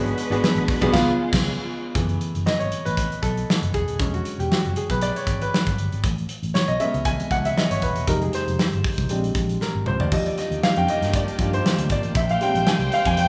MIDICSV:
0, 0, Header, 1, 5, 480
1, 0, Start_track
1, 0, Tempo, 509771
1, 1844, Time_signature, 4, 2, 24, 8
1, 12504, End_track
2, 0, Start_track
2, 0, Title_t, "Grand piano"
2, 0, Program_c, 0, 0
2, 0, Note_on_c, 0, 59, 81
2, 0, Note_on_c, 0, 62, 74
2, 0, Note_on_c, 0, 66, 77
2, 0, Note_on_c, 0, 68, 86
2, 87, Control_c, 0, 64, 127
2, 258, Note_off_c, 0, 59, 0
2, 261, Note_off_c, 0, 62, 0
2, 262, Note_off_c, 0, 66, 0
2, 264, Note_off_c, 0, 68, 0
2, 290, Note_on_c, 0, 59, 89
2, 294, Note_on_c, 0, 62, 82
2, 297, Note_on_c, 0, 66, 82
2, 303, Note_on_c, 0, 68, 95
2, 724, Note_off_c, 0, 59, 0
2, 726, Note_off_c, 0, 62, 0
2, 727, Note_off_c, 0, 66, 0
2, 730, Note_off_c, 0, 68, 0
2, 766, Note_on_c, 0, 59, 113
2, 767, Note_on_c, 0, 62, 89
2, 771, Note_on_c, 0, 66, 98
2, 779, Note_on_c, 0, 68, 115
2, 856, Note_off_c, 0, 59, 0
2, 869, Note_off_c, 0, 68, 0
2, 870, Note_on_c, 0, 59, 115
2, 878, Note_on_c, 0, 65, 100
2, 881, Note_off_c, 0, 62, 0
2, 883, Note_off_c, 0, 66, 0
2, 883, Note_on_c, 0, 68, 103
2, 896, Control_c, 0, 64, 0
2, 1042, Note_off_c, 0, 59, 0
2, 1047, Note_off_c, 0, 65, 0
2, 1050, Note_off_c, 0, 68, 0
2, 1083, Control_c, 0, 64, 127
2, 1830, Note_on_c, 0, 52, 50
2, 1837, Note_on_c, 0, 68, 46
2, 1840, Note_on_c, 0, 57, 43
2, 1843, Note_on_c, 0, 59, 58
2, 1857, Control_c, 0, 64, 0
2, 1998, Control_c, 0, 64, 127
2, 2318, Note_on_c, 0, 75, 100
2, 2442, Note_on_c, 0, 73, 80
2, 2455, Note_off_c, 0, 75, 0
2, 2670, Note_off_c, 0, 73, 0
2, 2687, Note_on_c, 0, 71, 95
2, 3035, Note_on_c, 0, 69, 90
2, 3051, Note_off_c, 0, 71, 0
2, 3486, Note_off_c, 0, 69, 0
2, 3507, Note_off_c, 0, 68, 0
2, 3521, Note_on_c, 0, 68, 99
2, 3720, Note_off_c, 0, 52, 0
2, 3725, Note_off_c, 0, 57, 0
2, 3726, Note_off_c, 0, 59, 0
2, 3757, Note_on_c, 0, 50, 51
2, 3759, Note_on_c, 0, 54, 46
2, 3763, Note_on_c, 0, 56, 44
2, 3768, Note_on_c, 0, 61, 61
2, 3775, Control_c, 0, 64, 0
2, 3867, Note_off_c, 0, 68, 0
2, 3898, Note_on_c, 0, 66, 76
2, 3941, Control_c, 0, 64, 127
2, 4138, Note_on_c, 0, 67, 81
2, 4143, Note_off_c, 0, 66, 0
2, 4239, Note_off_c, 0, 67, 0
2, 4250, Note_on_c, 0, 66, 84
2, 4445, Note_off_c, 0, 50, 0
2, 4446, Note_off_c, 0, 54, 0
2, 4448, Note_off_c, 0, 56, 0
2, 4451, Note_off_c, 0, 61, 0
2, 4491, Note_on_c, 0, 68, 78
2, 4495, Note_off_c, 0, 66, 0
2, 4609, Note_off_c, 0, 68, 0
2, 4620, Note_on_c, 0, 71, 92
2, 4720, Note_off_c, 0, 71, 0
2, 4730, Note_on_c, 0, 74, 98
2, 4848, Note_off_c, 0, 74, 0
2, 4861, Note_on_c, 0, 73, 75
2, 5104, Note_on_c, 0, 71, 91
2, 5105, Note_off_c, 0, 73, 0
2, 5546, Note_off_c, 0, 71, 0
2, 5697, Control_c, 0, 64, 0
2, 5878, Control_c, 0, 64, 127
2, 6160, Note_on_c, 0, 73, 97
2, 6288, Note_on_c, 0, 75, 92
2, 6296, Note_off_c, 0, 73, 0
2, 6399, Note_on_c, 0, 56, 53
2, 6404, Note_on_c, 0, 59, 52
2, 6404, Note_on_c, 0, 76, 95
2, 6406, Note_off_c, 0, 75, 0
2, 6409, Note_on_c, 0, 61, 60
2, 6642, Note_on_c, 0, 80, 109
2, 6652, Note_off_c, 0, 76, 0
2, 6887, Note_on_c, 0, 78, 103
2, 6891, Note_off_c, 0, 80, 0
2, 7019, Note_on_c, 0, 76, 90
2, 7020, Note_off_c, 0, 78, 0
2, 7130, Note_on_c, 0, 75, 83
2, 7131, Note_off_c, 0, 76, 0
2, 7256, Note_on_c, 0, 73, 84
2, 7261, Note_off_c, 0, 75, 0
2, 7370, Note_off_c, 0, 73, 0
2, 7370, Note_on_c, 0, 71, 81
2, 7565, Note_off_c, 0, 56, 0
2, 7567, Note_off_c, 0, 59, 0
2, 7570, Note_off_c, 0, 61, 0
2, 7591, Note_off_c, 0, 71, 0
2, 7601, Note_on_c, 0, 55, 59
2, 7605, Note_on_c, 0, 56, 51
2, 7607, Note_on_c, 0, 58, 52
2, 7610, Note_on_c, 0, 63, 59
2, 7615, Note_on_c, 0, 70, 96
2, 7619, Control_c, 0, 64, 0
2, 7731, Note_off_c, 0, 70, 0
2, 7742, Note_on_c, 0, 68, 71
2, 7792, Control_c, 0, 64, 127
2, 7842, Note_off_c, 0, 68, 0
2, 7859, Note_on_c, 0, 72, 94
2, 7930, Note_off_c, 0, 55, 0
2, 7932, Note_off_c, 0, 56, 0
2, 7933, Note_off_c, 0, 58, 0
2, 7935, Note_off_c, 0, 63, 0
2, 8299, Note_off_c, 0, 72, 0
2, 8567, Note_on_c, 0, 55, 55
2, 8572, Note_on_c, 0, 56, 52
2, 8577, Control_c, 0, 64, 0
2, 8577, Note_on_c, 0, 60, 53
2, 8579, Note_on_c, 0, 62, 64
2, 8768, Control_c, 0, 64, 127
2, 8893, Note_off_c, 0, 55, 0
2, 8896, Note_off_c, 0, 56, 0
2, 8898, Note_off_c, 0, 60, 0
2, 8899, Note_off_c, 0, 62, 0
2, 9056, Note_on_c, 0, 70, 78
2, 9275, Note_off_c, 0, 70, 0
2, 9298, Note_on_c, 0, 72, 87
2, 9422, Note_on_c, 0, 74, 78
2, 9426, Note_off_c, 0, 72, 0
2, 9529, Note_on_c, 0, 53, 50
2, 9532, Note_off_c, 0, 74, 0
2, 9535, Note_on_c, 0, 55, 47
2, 9538, Control_c, 0, 64, 0
2, 9538, Note_on_c, 0, 75, 89
2, 9542, Note_on_c, 0, 62, 61
2, 9653, Note_off_c, 0, 75, 0
2, 9667, Note_on_c, 0, 74, 70
2, 9717, Control_c, 0, 64, 127
2, 9764, Note_off_c, 0, 74, 0
2, 9775, Note_on_c, 0, 75, 78
2, 10013, Note_on_c, 0, 77, 93
2, 10018, Note_off_c, 0, 75, 0
2, 10130, Note_off_c, 0, 77, 0
2, 10145, Note_on_c, 0, 79, 85
2, 10192, Note_off_c, 0, 79, 0
2, 10262, Note_on_c, 0, 75, 88
2, 10501, Note_off_c, 0, 75, 0
2, 10504, Note_on_c, 0, 74, 93
2, 10716, Note_off_c, 0, 53, 0
2, 10717, Note_off_c, 0, 55, 0
2, 10721, Note_off_c, 0, 62, 0
2, 10730, Note_on_c, 0, 53, 49
2, 10731, Note_on_c, 0, 55, 44
2, 10735, Note_on_c, 0, 62, 55
2, 10839, Note_off_c, 0, 74, 0
2, 10864, Note_on_c, 0, 72, 100
2, 10944, Note_off_c, 0, 53, 0
2, 10944, Note_off_c, 0, 55, 0
2, 10947, Note_off_c, 0, 62, 0
2, 11220, Note_off_c, 0, 72, 0
2, 11224, Note_on_c, 0, 74, 90
2, 11455, Note_on_c, 0, 76, 93
2, 11457, Control_c, 0, 64, 0
2, 11461, Note_off_c, 0, 74, 0
2, 11583, Note_off_c, 0, 76, 0
2, 11588, Note_on_c, 0, 77, 87
2, 11632, Control_c, 0, 64, 127
2, 11684, Note_on_c, 0, 55, 57
2, 11688, Note_on_c, 0, 56, 45
2, 11692, Note_on_c, 0, 60, 56
2, 11694, Note_off_c, 0, 77, 0
2, 11698, Note_on_c, 0, 62, 59
2, 11702, Note_on_c, 0, 79, 99
2, 11939, Note_on_c, 0, 80, 96
2, 11940, Note_off_c, 0, 79, 0
2, 12178, Note_off_c, 0, 80, 0
2, 12180, Note_on_c, 0, 77, 97
2, 12304, Note_on_c, 0, 80, 101
2, 12305, Note_off_c, 0, 77, 0
2, 12412, Note_off_c, 0, 80, 0
2, 12416, Note_on_c, 0, 79, 106
2, 12504, Note_off_c, 0, 55, 0
2, 12504, Note_off_c, 0, 56, 0
2, 12504, Note_off_c, 0, 60, 0
2, 12504, Note_off_c, 0, 62, 0
2, 12504, Note_off_c, 0, 79, 0
2, 12504, End_track
3, 0, Start_track
3, 0, Title_t, "String section"
3, 0, Program_c, 1, 48
3, 0, Note_on_c, 1, 56, 77
3, 0, Note_on_c, 1, 62, 71
3, 0, Note_on_c, 1, 66, 74
3, 0, Note_on_c, 1, 71, 81
3, 855, Note_off_c, 1, 56, 0
3, 870, Note_off_c, 1, 66, 0
3, 871, Note_off_c, 1, 62, 0
3, 871, Note_off_c, 1, 71, 0
3, 882, Note_on_c, 1, 49, 76
3, 885, Note_on_c, 1, 59, 74
3, 886, Note_on_c, 1, 65, 83
3, 887, Note_on_c, 1, 56, 75
3, 1833, Note_off_c, 1, 49, 0
3, 1835, Note_off_c, 1, 56, 0
3, 1835, Note_off_c, 1, 59, 0
3, 1835, Note_off_c, 1, 65, 0
3, 9530, Note_on_c, 1, 58, 74
3, 9530, Note_on_c, 1, 67, 88
3, 9532, Note_on_c, 1, 51, 73
3, 9532, Note_on_c, 1, 62, 69
3, 11423, Note_off_c, 1, 67, 0
3, 11428, Note_off_c, 1, 51, 0
3, 11429, Note_off_c, 1, 62, 0
3, 11434, Note_on_c, 1, 67, 71
3, 11438, Note_on_c, 1, 74, 72
3, 11442, Note_on_c, 1, 72, 68
3, 11443, Note_on_c, 1, 79, 86
3, 12504, Note_off_c, 1, 58, 0
3, 12504, Note_off_c, 1, 67, 0
3, 12504, Note_off_c, 1, 72, 0
3, 12504, Note_off_c, 1, 74, 0
3, 12504, Note_off_c, 1, 79, 0
3, 12504, End_track
4, 0, Start_track
4, 0, Title_t, "Fingered electric bass"
4, 0, Program_c, 2, 33
4, 0, Note_on_c, 2, 32, 107
4, 115, Note_off_c, 2, 32, 0
4, 283, Note_on_c, 2, 32, 101
4, 375, Note_off_c, 2, 32, 0
4, 520, Note_on_c, 2, 33, 82
4, 613, Note_off_c, 2, 33, 0
4, 770, Note_on_c, 2, 35, 112
4, 859, Note_off_c, 2, 35, 0
4, 881, Note_on_c, 2, 37, 97
4, 1048, Note_off_c, 2, 37, 0
4, 1248, Note_on_c, 2, 37, 106
4, 1410, Note_off_c, 2, 37, 0
4, 1842, Note_on_c, 2, 30, 102
4, 2033, Note_off_c, 2, 30, 0
4, 2210, Note_on_c, 2, 30, 98
4, 2299, Note_off_c, 2, 30, 0
4, 2453, Note_on_c, 2, 32, 70
4, 2541, Note_off_c, 2, 32, 0
4, 2697, Note_on_c, 2, 33, 104
4, 2886, Note_off_c, 2, 33, 0
4, 3041, Note_on_c, 2, 35, 89
4, 3233, Note_off_c, 2, 35, 0
4, 3409, Note_on_c, 2, 30, 90
4, 3499, Note_off_c, 2, 30, 0
4, 3525, Note_on_c, 2, 28, 87
4, 3628, Note_off_c, 2, 28, 0
4, 3652, Note_on_c, 2, 27, 72
4, 3741, Note_off_c, 2, 27, 0
4, 3760, Note_on_c, 2, 28, 101
4, 3953, Note_off_c, 2, 28, 0
4, 4127, Note_on_c, 2, 28, 101
4, 4218, Note_off_c, 2, 28, 0
4, 4376, Note_on_c, 2, 30, 72
4, 4463, Note_off_c, 2, 30, 0
4, 4610, Note_on_c, 2, 35, 88
4, 4803, Note_off_c, 2, 35, 0
4, 4964, Note_on_c, 2, 32, 88
4, 5155, Note_off_c, 2, 32, 0
4, 5337, Note_on_c, 2, 32, 91
4, 5437, Note_off_c, 2, 32, 0
4, 5437, Note_on_c, 2, 31, 89
4, 5543, Note_off_c, 2, 31, 0
4, 5576, Note_on_c, 2, 32, 80
4, 5663, Note_off_c, 2, 32, 0
4, 5688, Note_on_c, 2, 33, 117
4, 5878, Note_off_c, 2, 33, 0
4, 6050, Note_on_c, 2, 33, 85
4, 6140, Note_off_c, 2, 33, 0
4, 6291, Note_on_c, 2, 35, 85
4, 6380, Note_off_c, 2, 35, 0
4, 6537, Note_on_c, 2, 37, 100
4, 6727, Note_off_c, 2, 37, 0
4, 6881, Note_on_c, 2, 37, 93
4, 7074, Note_off_c, 2, 37, 0
4, 7253, Note_on_c, 2, 32, 82
4, 7342, Note_off_c, 2, 32, 0
4, 7364, Note_on_c, 2, 27, 103
4, 7468, Note_off_c, 2, 27, 0
4, 7503, Note_on_c, 2, 28, 74
4, 7588, Note_off_c, 2, 28, 0
4, 7606, Note_on_c, 2, 29, 107
4, 7797, Note_off_c, 2, 29, 0
4, 7979, Note_on_c, 2, 29, 98
4, 8065, Note_off_c, 2, 29, 0
4, 8216, Note_on_c, 2, 31, 83
4, 8304, Note_off_c, 2, 31, 0
4, 8456, Note_on_c, 2, 36, 96
4, 8544, Note_off_c, 2, 36, 0
4, 8566, Note_on_c, 2, 34, 105
4, 8757, Note_off_c, 2, 34, 0
4, 8806, Note_on_c, 2, 34, 87
4, 8997, Note_off_c, 2, 34, 0
4, 9177, Note_on_c, 2, 32, 83
4, 9265, Note_off_c, 2, 32, 0
4, 9292, Note_on_c, 2, 37, 83
4, 9392, Note_off_c, 2, 37, 0
4, 9418, Note_on_c, 2, 38, 74
4, 9505, Note_off_c, 2, 38, 0
4, 9528, Note_on_c, 2, 39, 93
4, 9718, Note_off_c, 2, 39, 0
4, 9897, Note_on_c, 2, 39, 95
4, 9984, Note_off_c, 2, 39, 0
4, 10137, Note_on_c, 2, 41, 87
4, 10224, Note_off_c, 2, 41, 0
4, 10369, Note_on_c, 2, 43, 90
4, 10562, Note_off_c, 2, 43, 0
4, 10720, Note_on_c, 2, 43, 89
4, 10913, Note_off_c, 2, 43, 0
4, 11093, Note_on_c, 2, 38, 87
4, 11182, Note_off_c, 2, 38, 0
4, 11205, Note_on_c, 2, 32, 86
4, 11308, Note_off_c, 2, 32, 0
4, 11329, Note_on_c, 2, 33, 75
4, 11419, Note_off_c, 2, 33, 0
4, 11444, Note_on_c, 2, 34, 118
4, 11635, Note_off_c, 2, 34, 0
4, 11815, Note_on_c, 2, 34, 88
4, 11902, Note_off_c, 2, 34, 0
4, 12044, Note_on_c, 2, 36, 78
4, 12135, Note_off_c, 2, 36, 0
4, 12291, Note_on_c, 2, 41, 100
4, 12483, Note_off_c, 2, 41, 0
4, 12504, End_track
5, 0, Start_track
5, 0, Title_t, "Drums"
5, 56, Note_on_c, 9, 42, 42
5, 150, Note_off_c, 9, 42, 0
5, 167, Note_on_c, 9, 42, 84
5, 261, Note_off_c, 9, 42, 0
5, 303, Note_on_c, 9, 42, 55
5, 397, Note_off_c, 9, 42, 0
5, 413, Note_on_c, 9, 38, 114
5, 507, Note_off_c, 9, 38, 0
5, 530, Note_on_c, 9, 42, 41
5, 624, Note_off_c, 9, 42, 0
5, 640, Note_on_c, 9, 46, 85
5, 643, Note_on_c, 9, 36, 115
5, 734, Note_off_c, 9, 46, 0
5, 737, Note_off_c, 9, 36, 0
5, 771, Note_on_c, 9, 36, 90
5, 775, Note_on_c, 9, 42, 68
5, 865, Note_off_c, 9, 36, 0
5, 869, Note_off_c, 9, 42, 0
5, 881, Note_on_c, 9, 36, 117
5, 883, Note_on_c, 9, 49, 83
5, 893, Note_on_c, 9, 38, 114
5, 975, Note_off_c, 9, 36, 0
5, 977, Note_off_c, 9, 49, 0
5, 987, Note_off_c, 9, 38, 0
5, 1250, Note_on_c, 9, 36, 121
5, 1253, Note_on_c, 9, 49, 90
5, 1262, Note_on_c, 9, 38, 119
5, 1344, Note_off_c, 9, 36, 0
5, 1347, Note_off_c, 9, 49, 0
5, 1356, Note_off_c, 9, 38, 0
5, 1838, Note_on_c, 9, 36, 119
5, 1839, Note_on_c, 9, 42, 86
5, 1932, Note_off_c, 9, 36, 0
5, 1933, Note_off_c, 9, 42, 0
5, 1967, Note_on_c, 9, 42, 44
5, 2061, Note_off_c, 9, 42, 0
5, 2081, Note_on_c, 9, 42, 77
5, 2175, Note_off_c, 9, 42, 0
5, 2213, Note_on_c, 9, 42, 57
5, 2307, Note_off_c, 9, 42, 0
5, 2324, Note_on_c, 9, 38, 97
5, 2418, Note_off_c, 9, 38, 0
5, 2452, Note_on_c, 9, 42, 42
5, 2546, Note_off_c, 9, 42, 0
5, 2559, Note_on_c, 9, 42, 76
5, 2653, Note_off_c, 9, 42, 0
5, 2695, Note_on_c, 9, 42, 59
5, 2789, Note_off_c, 9, 42, 0
5, 2800, Note_on_c, 9, 36, 98
5, 2800, Note_on_c, 9, 42, 95
5, 2894, Note_off_c, 9, 36, 0
5, 2894, Note_off_c, 9, 42, 0
5, 2937, Note_on_c, 9, 42, 53
5, 3031, Note_off_c, 9, 42, 0
5, 3039, Note_on_c, 9, 36, 88
5, 3049, Note_on_c, 9, 42, 69
5, 3133, Note_off_c, 9, 36, 0
5, 3143, Note_off_c, 9, 42, 0
5, 3177, Note_on_c, 9, 42, 55
5, 3271, Note_off_c, 9, 42, 0
5, 3296, Note_on_c, 9, 38, 112
5, 3390, Note_off_c, 9, 38, 0
5, 3416, Note_on_c, 9, 42, 58
5, 3510, Note_off_c, 9, 42, 0
5, 3521, Note_on_c, 9, 42, 56
5, 3523, Note_on_c, 9, 36, 80
5, 3615, Note_off_c, 9, 42, 0
5, 3618, Note_off_c, 9, 36, 0
5, 3652, Note_on_c, 9, 42, 52
5, 3746, Note_off_c, 9, 42, 0
5, 3762, Note_on_c, 9, 36, 119
5, 3763, Note_on_c, 9, 42, 80
5, 3856, Note_off_c, 9, 36, 0
5, 3857, Note_off_c, 9, 42, 0
5, 3896, Note_on_c, 9, 42, 43
5, 3990, Note_off_c, 9, 42, 0
5, 4004, Note_on_c, 9, 42, 84
5, 4098, Note_off_c, 9, 42, 0
5, 4143, Note_on_c, 9, 42, 56
5, 4237, Note_off_c, 9, 42, 0
5, 4253, Note_on_c, 9, 38, 95
5, 4347, Note_off_c, 9, 38, 0
5, 4374, Note_on_c, 9, 42, 37
5, 4468, Note_off_c, 9, 42, 0
5, 4483, Note_on_c, 9, 42, 82
5, 4577, Note_off_c, 9, 42, 0
5, 4611, Note_on_c, 9, 36, 89
5, 4612, Note_on_c, 9, 42, 59
5, 4706, Note_off_c, 9, 36, 0
5, 4706, Note_off_c, 9, 42, 0
5, 4721, Note_on_c, 9, 42, 93
5, 4815, Note_off_c, 9, 42, 0
5, 4860, Note_on_c, 9, 42, 58
5, 4955, Note_off_c, 9, 42, 0
5, 4960, Note_on_c, 9, 36, 95
5, 4968, Note_on_c, 9, 42, 69
5, 5055, Note_off_c, 9, 36, 0
5, 5062, Note_off_c, 9, 42, 0
5, 5098, Note_on_c, 9, 42, 57
5, 5192, Note_off_c, 9, 42, 0
5, 5220, Note_on_c, 9, 38, 110
5, 5314, Note_off_c, 9, 38, 0
5, 5336, Note_on_c, 9, 36, 84
5, 5338, Note_on_c, 9, 42, 56
5, 5430, Note_off_c, 9, 36, 0
5, 5432, Note_off_c, 9, 42, 0
5, 5445, Note_on_c, 9, 42, 58
5, 5539, Note_off_c, 9, 42, 0
5, 5577, Note_on_c, 9, 42, 49
5, 5672, Note_off_c, 9, 42, 0
5, 5684, Note_on_c, 9, 36, 109
5, 5689, Note_on_c, 9, 42, 90
5, 5778, Note_off_c, 9, 36, 0
5, 5783, Note_off_c, 9, 42, 0
5, 5820, Note_on_c, 9, 42, 41
5, 5914, Note_off_c, 9, 42, 0
5, 5922, Note_on_c, 9, 42, 85
5, 6016, Note_off_c, 9, 42, 0
5, 6056, Note_on_c, 9, 42, 50
5, 6151, Note_off_c, 9, 42, 0
5, 6168, Note_on_c, 9, 38, 96
5, 6262, Note_off_c, 9, 38, 0
5, 6291, Note_on_c, 9, 42, 37
5, 6385, Note_off_c, 9, 42, 0
5, 6403, Note_on_c, 9, 42, 88
5, 6497, Note_off_c, 9, 42, 0
5, 6536, Note_on_c, 9, 42, 54
5, 6630, Note_off_c, 9, 42, 0
5, 6638, Note_on_c, 9, 42, 91
5, 6641, Note_on_c, 9, 36, 100
5, 6733, Note_off_c, 9, 42, 0
5, 6735, Note_off_c, 9, 36, 0
5, 6778, Note_on_c, 9, 42, 59
5, 6872, Note_off_c, 9, 42, 0
5, 6881, Note_on_c, 9, 36, 96
5, 6889, Note_on_c, 9, 42, 66
5, 6975, Note_off_c, 9, 36, 0
5, 6984, Note_off_c, 9, 42, 0
5, 7016, Note_on_c, 9, 42, 61
5, 7110, Note_off_c, 9, 42, 0
5, 7133, Note_on_c, 9, 38, 104
5, 7227, Note_off_c, 9, 38, 0
5, 7259, Note_on_c, 9, 42, 63
5, 7353, Note_off_c, 9, 42, 0
5, 7361, Note_on_c, 9, 42, 67
5, 7366, Note_on_c, 9, 36, 74
5, 7455, Note_off_c, 9, 42, 0
5, 7460, Note_off_c, 9, 36, 0
5, 7491, Note_on_c, 9, 42, 55
5, 7585, Note_off_c, 9, 42, 0
5, 7604, Note_on_c, 9, 36, 115
5, 7604, Note_on_c, 9, 42, 96
5, 7698, Note_off_c, 9, 36, 0
5, 7698, Note_off_c, 9, 42, 0
5, 7737, Note_on_c, 9, 42, 45
5, 7831, Note_off_c, 9, 42, 0
5, 7844, Note_on_c, 9, 42, 85
5, 7855, Note_on_c, 9, 38, 41
5, 7938, Note_off_c, 9, 42, 0
5, 7950, Note_off_c, 9, 38, 0
5, 7983, Note_on_c, 9, 42, 53
5, 8077, Note_off_c, 9, 42, 0
5, 8092, Note_on_c, 9, 38, 109
5, 8186, Note_off_c, 9, 38, 0
5, 8213, Note_on_c, 9, 42, 40
5, 8308, Note_off_c, 9, 42, 0
5, 8326, Note_on_c, 9, 46, 73
5, 8328, Note_on_c, 9, 36, 108
5, 8420, Note_off_c, 9, 46, 0
5, 8422, Note_off_c, 9, 36, 0
5, 8456, Note_on_c, 9, 36, 88
5, 8456, Note_on_c, 9, 42, 63
5, 8550, Note_off_c, 9, 36, 0
5, 8550, Note_off_c, 9, 42, 0
5, 8560, Note_on_c, 9, 42, 84
5, 8654, Note_off_c, 9, 42, 0
5, 8699, Note_on_c, 9, 42, 57
5, 8794, Note_off_c, 9, 42, 0
5, 8803, Note_on_c, 9, 36, 91
5, 8806, Note_on_c, 9, 42, 72
5, 8897, Note_off_c, 9, 36, 0
5, 8900, Note_off_c, 9, 42, 0
5, 8938, Note_on_c, 9, 42, 57
5, 9033, Note_off_c, 9, 42, 0
5, 9051, Note_on_c, 9, 38, 62
5, 9145, Note_off_c, 9, 38, 0
5, 9285, Note_on_c, 9, 45, 76
5, 9379, Note_off_c, 9, 45, 0
5, 9415, Note_on_c, 9, 43, 85
5, 9509, Note_off_c, 9, 43, 0
5, 9527, Note_on_c, 9, 36, 113
5, 9527, Note_on_c, 9, 55, 89
5, 9621, Note_off_c, 9, 36, 0
5, 9622, Note_off_c, 9, 55, 0
5, 9658, Note_on_c, 9, 42, 45
5, 9753, Note_off_c, 9, 42, 0
5, 9770, Note_on_c, 9, 42, 82
5, 9781, Note_on_c, 9, 38, 39
5, 9864, Note_off_c, 9, 42, 0
5, 9875, Note_off_c, 9, 38, 0
5, 9904, Note_on_c, 9, 42, 51
5, 9998, Note_off_c, 9, 42, 0
5, 10013, Note_on_c, 9, 38, 108
5, 10108, Note_off_c, 9, 38, 0
5, 10134, Note_on_c, 9, 42, 39
5, 10228, Note_off_c, 9, 42, 0
5, 10248, Note_on_c, 9, 42, 83
5, 10342, Note_off_c, 9, 42, 0
5, 10380, Note_on_c, 9, 42, 64
5, 10387, Note_on_c, 9, 38, 37
5, 10474, Note_off_c, 9, 42, 0
5, 10481, Note_off_c, 9, 38, 0
5, 10485, Note_on_c, 9, 36, 108
5, 10486, Note_on_c, 9, 42, 90
5, 10579, Note_off_c, 9, 36, 0
5, 10580, Note_off_c, 9, 42, 0
5, 10622, Note_on_c, 9, 42, 56
5, 10716, Note_off_c, 9, 42, 0
5, 10722, Note_on_c, 9, 36, 101
5, 10731, Note_on_c, 9, 42, 73
5, 10817, Note_off_c, 9, 36, 0
5, 10825, Note_off_c, 9, 42, 0
5, 10859, Note_on_c, 9, 42, 57
5, 10954, Note_off_c, 9, 42, 0
5, 10977, Note_on_c, 9, 38, 113
5, 11072, Note_off_c, 9, 38, 0
5, 11096, Note_on_c, 9, 42, 65
5, 11190, Note_off_c, 9, 42, 0
5, 11200, Note_on_c, 9, 42, 63
5, 11204, Note_on_c, 9, 36, 87
5, 11294, Note_off_c, 9, 42, 0
5, 11299, Note_off_c, 9, 36, 0
5, 11328, Note_on_c, 9, 42, 51
5, 11423, Note_off_c, 9, 42, 0
5, 11440, Note_on_c, 9, 42, 87
5, 11442, Note_on_c, 9, 36, 123
5, 11534, Note_off_c, 9, 42, 0
5, 11536, Note_off_c, 9, 36, 0
5, 11574, Note_on_c, 9, 42, 46
5, 11668, Note_off_c, 9, 42, 0
5, 11683, Note_on_c, 9, 42, 80
5, 11777, Note_off_c, 9, 42, 0
5, 11820, Note_on_c, 9, 42, 55
5, 11914, Note_off_c, 9, 42, 0
5, 11927, Note_on_c, 9, 38, 107
5, 12021, Note_off_c, 9, 38, 0
5, 12051, Note_on_c, 9, 42, 39
5, 12145, Note_off_c, 9, 42, 0
5, 12164, Note_on_c, 9, 42, 83
5, 12258, Note_off_c, 9, 42, 0
5, 12292, Note_on_c, 9, 36, 104
5, 12295, Note_on_c, 9, 42, 56
5, 12387, Note_off_c, 9, 36, 0
5, 12389, Note_off_c, 9, 42, 0
5, 12402, Note_on_c, 9, 42, 89
5, 12496, Note_off_c, 9, 42, 0
5, 12504, End_track
0, 0, End_of_file